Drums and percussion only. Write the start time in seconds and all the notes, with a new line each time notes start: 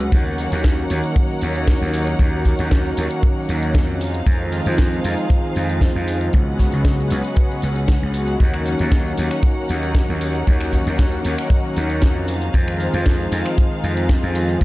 0.00 closed hi-hat, cabasa
0.12 kick, closed hi-hat, crash, cabasa
0.38 open hi-hat, cabasa
0.52 closed hi-hat, cabasa
0.64 kick, snare, closed hi-hat, cabasa
0.78 cabasa
0.90 open hi-hat, cabasa
1.04 closed hi-hat, cabasa
1.16 kick, closed hi-hat, cabasa
1.41 open hi-hat, cabasa
1.56 closed hi-hat, cabasa
1.68 kick, snare, closed hi-hat, cabasa
1.94 open hi-hat, cabasa
2.07 closed hi-hat, cabasa
2.19 kick, closed hi-hat, cabasa
2.45 kick, open hi-hat, cabasa
2.59 closed hi-hat, cabasa
2.71 kick, snare, closed hi-hat, cabasa
2.85 cabasa
2.97 open hi-hat, cabasa
3.10 closed hi-hat, cabasa
3.23 kick, closed hi-hat, cabasa
3.49 open hi-hat, cabasa
3.62 closed hi-hat, cabasa
3.75 kick, snare, closed hi-hat, cabasa
4.01 open hi-hat, cabasa
4.13 closed hi-hat, cabasa
4.26 kick, closed hi-hat, cabasa
4.52 open hi-hat, cabasa
4.66 closed hi-hat, cabasa
4.78 kick, snare, closed hi-hat, cabasa
4.93 cabasa
5.04 open hi-hat, cabasa
5.18 closed hi-hat, cabasa
5.30 kick, closed hi-hat, cabasa
5.56 open hi-hat, cabasa
5.69 closed hi-hat, cabasa
5.81 kick, snare, closed hi-hat, cabasa
6.08 open hi-hat, cabasa
6.21 closed hi-hat, cabasa
6.33 kick, closed hi-hat, cabasa
6.59 kick, snare, open hi-hat, cabasa
6.72 closed hi-hat, cabasa
6.85 kick, snare, closed hi-hat, cabasa
7.00 cabasa
7.11 open hi-hat, cabasa
7.24 closed hi-hat, cabasa
7.36 kick, closed hi-hat, cabasa
7.51 cabasa
7.62 open hi-hat, cabasa
7.76 closed hi-hat, cabasa
7.88 kick, snare, closed hi-hat, cabasa
8.14 open hi-hat, cabasa
8.28 closed hi-hat, cabasa
8.40 kick, closed hi-hat, cabasa, shaker
8.54 finger snap, shaker
8.66 open hi-hat, cabasa
8.79 closed hi-hat, cabasa, shaker
8.92 kick, snare, closed hi-hat, cabasa, shaker
9.06 cabasa, shaker
9.18 open hi-hat, cabasa
9.31 finger snap, closed hi-hat, cabasa, shaker
9.43 kick, closed hi-hat, cabasa, shaker
9.58 shaker
9.69 open hi-hat, cabasa
9.83 closed hi-hat, cabasa, shaker
9.95 kick, snare, closed hi-hat, cabasa, shaker
10.09 shaker
10.21 open hi-hat, cabasa
10.35 closed hi-hat, cabasa, shaker
10.47 kick, closed hi-hat, cabasa, shaker
10.61 finger snap, shaker
10.73 kick, open hi-hat, cabasa
10.87 closed hi-hat, cabasa, shaker
10.98 kick, snare, closed hi-hat, cabasa, shaker
11.12 cabasa, shaker
11.24 open hi-hat, cabasa
11.38 finger snap, closed hi-hat, cabasa, shaker
11.50 kick, closed hi-hat, cabasa, shaker
11.65 shaker
11.76 open hi-hat, cabasa
11.90 closed hi-hat, cabasa, shaker
12.02 kick, snare, closed hi-hat, cabasa, shaker
12.16 shaker
12.28 open hi-hat, cabasa
12.42 closed hi-hat, cabasa, shaker
12.54 kick, closed hi-hat, cabasa, shaker
12.68 finger snap, shaker
12.80 open hi-hat, cabasa
12.93 closed hi-hat, cabasa, shaker
13.06 kick, snare, closed hi-hat, cabasa, shaker
13.20 cabasa, shaker
13.32 open hi-hat, cabasa
13.46 finger snap, closed hi-hat, cabasa, shaker
13.58 kick, closed hi-hat, cabasa, shaker
13.72 shaker
13.84 open hi-hat, cabasa
13.97 closed hi-hat, cabasa, shaker
14.09 kick, snare, closed hi-hat, cabasa, shaker
14.24 shaker
14.35 open hi-hat, cabasa
14.49 closed hi-hat, cabasa, shaker
14.61 kick, closed hi-hat, cabasa